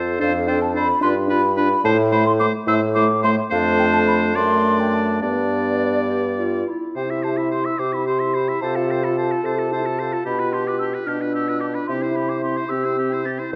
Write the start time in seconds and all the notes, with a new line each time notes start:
Already playing: F2 F4 A4 C5
0.19 F2 D4 A4 C5 F5
0.47 D4 A4 C5 G5
0.62 A5
0.74 D4 A4 C5 B5
1.01 G2 D4 F4 B4 C6
1.28 D4 F4 B4 B5
1.56 D4 F4 B4 B5
1.84 A2 A3 E4 C5 A5
2.12 A3 E4 C5 B5
2.26 C6
2.39 A3 E4 C5 D6
2.67 A2 A3 E4 C5 E6
2.95 A3 E4 C5 D6
3.23 A3 E4 C5 C6
3.50 F2 A3 D4 C5 F5
3.79 G5
3.93 A5
4.07 B5
4.35 F#2 A3 D4 D5 C6
4.80 G5
4.93 A5
5.22 G2 B3 D4 D5
6.10 G4
6.39 F4
6.67 E4
6.96 C3 E4 G4 C5 G5
7.10 E4 E5
7.23 G4 C5 A5
7.38 E4 E5 B5
7.51 G4 C5 C6
7.65 E4 E5 E6
7.79 C3 G4 C5 D6
7.93 E4 E5 B5
8.06 G4 C5 C6
8.20 E4 E5
8.34 G4 C5 B5
8.48 E4 E5
8.61 C3 F4 A4 C5 A5
8.75 F4 A4 F5
8.89 A4 C5 G5
9.03 F4 A4 B5
9.16 A4 C5 A5
9.31 F4 A4
9.43 C3 A4 C5 A5
9.57 F4 A4
9.71 E4 A4 C5
9.86 F4 A4
9.98 F4 A4 C5
10.13 F4 A4
10.25 B2 D4 G4 B5
10.40 F4 B4
10.52 D4 G4 C6
10.66 F4 B4 D6
10.79 D4 G4 E6
10.93 F4 B4
11.06 B2 D4 G4 F6
11.21 F4 B4
11.33 D4 G4 E6
11.48 F4 B4
11.60 D4 G4 D6
11.74 F4 B4 B5
11.86 C3 C4 E4 G4 C6
12.02 E4 C5
12.13 C4 G4 B5
12.28 E4 C5 D6
12.41 C4 G4 C6
12.57 E4 C5
12.69 C3 C4 G4 E6
12.85 E4 C5
12.98 C4 G4
13.12 E4 C5
13.25 C4 G4 A6
13.39 E4 C5
13.51 E2 E4 G6